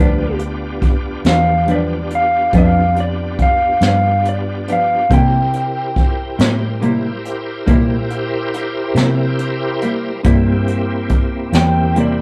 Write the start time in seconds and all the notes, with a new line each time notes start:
Already playing: D2 G2 F3 B3 D4 F4 B4
0.00 D4 G4
0.39 closed hi-hat
0.82 kick, closed hi-hat
1.25 E2 F3 B3 D4 F5, snare, closed hi-hat
1.67 G2 F3 B3 D4, closed hi-hat
1.71 D5
2.10 closed hi-hat
2.15 F5
2.53 F2 G2 F3 B3 D4, kick, closed hi-hat
2.58 F5
2.96 D5, closed hi-hat
3.39 F5, kick, closed hi-hat
3.81 G2 F3 B3 D4, snare, closed hi-hat
3.87 F5
4.25 D5, closed hi-hat
4.68 F3 B3 D4, closed hi-hat
4.72 F5
5.09 C3 G3 A#3 E4 G4 A#4 C5 G5, kick, closed hi-hat
5.53 closed hi-hat
5.96 kick, closed hi-hat
6.39 A2 G3 A#3 E4, snare, closed hi-hat
6.81 C3 G3 A#3 E4, closed hi-hat
7.25 closed hi-hat
7.66 A#2 C3 G3 A#3 E4, kick, closed hi-hat
8.10 closed hi-hat
8.54 closed hi-hat
8.95 C3 G3 A#3 E4, snare, closed hi-hat
9.39 closed hi-hat
9.82 G3 A#3 E4, closed hi-hat
10.23 G2 C3 G3 A#3 C4 E4 G4, kick, closed hi-hat
10.68 closed hi-hat
11.09 kick, closed hi-hat
11.52 E2 G3 A#3 E4 G5, snare, closed hi-hat
11.96 C3 G3 A#3 E4, closed hi-hat
12.00 D5